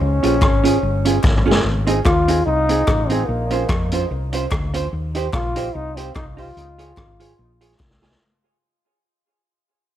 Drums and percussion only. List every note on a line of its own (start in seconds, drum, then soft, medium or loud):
0.23 closed hi-hat medium
0.42 kick loud
0.42 cross-stick loud
0.42 clap medium
0.65 closed hi-hat loud
1.05 closed hi-hat medium
1.23 kick loud
1.23 snare medium
1.23 clap medium
1.38 mid tom medium
1.51 snare loud
1.87 closed hi-hat medium
2.05 kick loud
2.05 cross-stick loud
2.05 clap loud
2.28 closed hi-hat loud
2.69 closed hi-hat medium
2.87 kick loud
2.87 cross-stick loud
2.87 clap loud
3.10 closed hi-hat medium
3.50 closed hi-hat medium
3.69 kick loud
3.69 cross-stick loud
3.69 clap loud
3.92 closed hi-hat loud
4.33 closed hi-hat loud
4.51 kick loud
4.51 cross-stick loud
4.51 clap medium
4.74 closed hi-hat loud
5.15 closed hi-hat medium
5.33 kick loud
5.33 cross-stick loud
5.33 clap medium
5.56 closed hi-hat loud
5.97 closed hi-hat loud
6.15 kick loud
6.15 cross-stick loud
6.15 clap medium
6.38 open hi-hat soft
6.57 hi-hat pedal medium
6.79 closed hi-hat medium
6.97 kick loud
6.97 cross-stick loud
6.97 clap medium
7.20 closed hi-hat loud
7.61 closed hi-hat medium
7.80 kick loud
7.80 snare medium
7.80 clap medium
7.91 snare medium
8.03 snare medium
8.11 snare medium